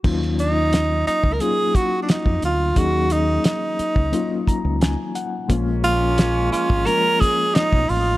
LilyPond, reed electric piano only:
\new Staff \with { instrumentName = "Reed electric piano" } { \time 4/4 \key dis \minor \tempo 4 = 88 << { r1 | r2 r8 ais''8 gis''8 fis''8 | r1 | } \\ { <fis ais cis' dis' eis'>2 <fis ais cis' dis' eis'>2 | <fis ais cis' dis' gis'>2 <fis ais cis' dis' eis'>2 | <eis gis ais cis' eis'>2 <eis gis ais cis' eis'>2 | } >> }